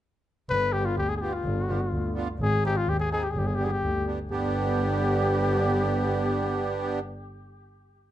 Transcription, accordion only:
0, 0, Header, 1, 2, 480
1, 0, Start_track
1, 0, Tempo, 479616
1, 494, Time_signature, 2, 2, 24, 8
1, 8121, End_track
2, 0, Start_track
2, 0, Title_t, "Accordion"
2, 0, Program_c, 0, 21
2, 733, Note_on_c, 0, 59, 57
2, 736, Note_on_c, 0, 62, 51
2, 744, Note_on_c, 0, 67, 63
2, 853, Note_off_c, 0, 59, 0
2, 854, Note_off_c, 0, 62, 0
2, 858, Note_off_c, 0, 67, 0
2, 1208, Note_on_c, 0, 59, 61
2, 1210, Note_on_c, 0, 62, 53
2, 1218, Note_on_c, 0, 65, 72
2, 1329, Note_off_c, 0, 59, 0
2, 1330, Note_off_c, 0, 62, 0
2, 1334, Note_off_c, 0, 65, 0
2, 1672, Note_on_c, 0, 59, 55
2, 1681, Note_on_c, 0, 62, 60
2, 1682, Note_on_c, 0, 67, 67
2, 1800, Note_off_c, 0, 59, 0
2, 1804, Note_off_c, 0, 62, 0
2, 1804, Note_off_c, 0, 67, 0
2, 2145, Note_on_c, 0, 59, 81
2, 2155, Note_on_c, 0, 62, 66
2, 2165, Note_on_c, 0, 65, 84
2, 2275, Note_off_c, 0, 59, 0
2, 2280, Note_off_c, 0, 62, 0
2, 2285, Note_off_c, 0, 65, 0
2, 2631, Note_on_c, 0, 60, 57
2, 2638, Note_on_c, 0, 63, 55
2, 2648, Note_on_c, 0, 68, 71
2, 2757, Note_off_c, 0, 60, 0
2, 2760, Note_off_c, 0, 63, 0
2, 2765, Note_off_c, 0, 68, 0
2, 3107, Note_on_c, 0, 60, 62
2, 3115, Note_on_c, 0, 68, 75
2, 3116, Note_on_c, 0, 63, 58
2, 3234, Note_off_c, 0, 60, 0
2, 3238, Note_off_c, 0, 63, 0
2, 3238, Note_off_c, 0, 68, 0
2, 3586, Note_on_c, 0, 59, 60
2, 3593, Note_on_c, 0, 62, 55
2, 3595, Note_on_c, 0, 67, 68
2, 3713, Note_off_c, 0, 59, 0
2, 3716, Note_off_c, 0, 62, 0
2, 3717, Note_off_c, 0, 67, 0
2, 4067, Note_on_c, 0, 62, 59
2, 4069, Note_on_c, 0, 59, 63
2, 4074, Note_on_c, 0, 67, 69
2, 4193, Note_off_c, 0, 62, 0
2, 4194, Note_off_c, 0, 59, 0
2, 4197, Note_off_c, 0, 67, 0
2, 4311, Note_on_c, 0, 67, 93
2, 4313, Note_on_c, 0, 59, 77
2, 4319, Note_on_c, 0, 62, 69
2, 7001, Note_off_c, 0, 67, 0
2, 7002, Note_off_c, 0, 59, 0
2, 7005, Note_off_c, 0, 62, 0
2, 8121, End_track
0, 0, End_of_file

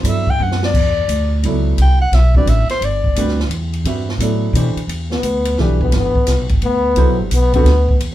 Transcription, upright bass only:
0, 0, Header, 1, 3, 480
1, 0, Start_track
1, 0, Tempo, 346220
1, 1031, Time_signature, 3, 2, 24, 8
1, 11292, End_track
2, 0, Start_track
2, 0, Title_t, "Upright bass"
2, 0, Program_c, 0, 32
2, 45, Note_on_c, 0, 43, 88
2, 524, Note_off_c, 0, 43, 0
2, 530, Note_on_c, 0, 42, 95
2, 1007, Note_off_c, 0, 42, 0
2, 1020, Note_on_c, 0, 40, 90
2, 1489, Note_off_c, 0, 40, 0
2, 1497, Note_on_c, 0, 38, 92
2, 1970, Note_off_c, 0, 38, 0
2, 1982, Note_on_c, 0, 37, 85
2, 2453, Note_off_c, 0, 37, 0
2, 2463, Note_on_c, 0, 36, 80
2, 2925, Note_off_c, 0, 36, 0
2, 2933, Note_on_c, 0, 35, 89
2, 3393, Note_off_c, 0, 35, 0
2, 3401, Note_on_c, 0, 33, 97
2, 3706, Note_off_c, 0, 33, 0
2, 3893, Note_on_c, 0, 31, 83
2, 4368, Note_off_c, 0, 31, 0
2, 4377, Note_on_c, 0, 38, 99
2, 4833, Note_off_c, 0, 38, 0
2, 4842, Note_on_c, 0, 40, 97
2, 5322, Note_off_c, 0, 40, 0
2, 5329, Note_on_c, 0, 43, 84
2, 5791, Note_off_c, 0, 43, 0
2, 5799, Note_on_c, 0, 45, 90
2, 6275, Note_off_c, 0, 45, 0
2, 6284, Note_on_c, 0, 47, 102
2, 6586, Note_off_c, 0, 47, 0
2, 6755, Note_on_c, 0, 40, 86
2, 7230, Note_off_c, 0, 40, 0
2, 7238, Note_on_c, 0, 38, 89
2, 7719, Note_off_c, 0, 38, 0
2, 7728, Note_on_c, 0, 35, 94
2, 8198, Note_off_c, 0, 35, 0
2, 8206, Note_on_c, 0, 31, 90
2, 8506, Note_off_c, 0, 31, 0
2, 8683, Note_on_c, 0, 36, 84
2, 8843, Note_off_c, 0, 36, 0
2, 8843, Note_on_c, 0, 35, 61
2, 8994, Note_off_c, 0, 35, 0
2, 9002, Note_on_c, 0, 31, 69
2, 9155, Note_off_c, 0, 31, 0
2, 9163, Note_on_c, 0, 38, 88
2, 9634, Note_off_c, 0, 38, 0
2, 9642, Note_on_c, 0, 36, 82
2, 9807, Note_off_c, 0, 36, 0
2, 9807, Note_on_c, 0, 35, 56
2, 9957, Note_off_c, 0, 35, 0
2, 9965, Note_on_c, 0, 31, 65
2, 10113, Note_off_c, 0, 31, 0
2, 10121, Note_on_c, 0, 35, 86
2, 10583, Note_off_c, 0, 35, 0
2, 10591, Note_on_c, 0, 38, 97
2, 11075, Note_off_c, 0, 38, 0
2, 11085, Note_on_c, 0, 40, 82
2, 11292, Note_off_c, 0, 40, 0
2, 11292, End_track
3, 0, Start_track
3, 0, Title_t, "Muted upright bass strokes"
3, 3726, Note_on_c, 9, 29, 40
3, 3865, Note_off_c, 9, 29, 0
3, 6596, Note_on_c, 9, 29, 42
3, 6735, Note_off_c, 9, 29, 0
3, 8525, Note_on_c, 9, 29, 46
3, 8664, Note_off_c, 9, 29, 0
3, 11292, End_track
0, 0, End_of_file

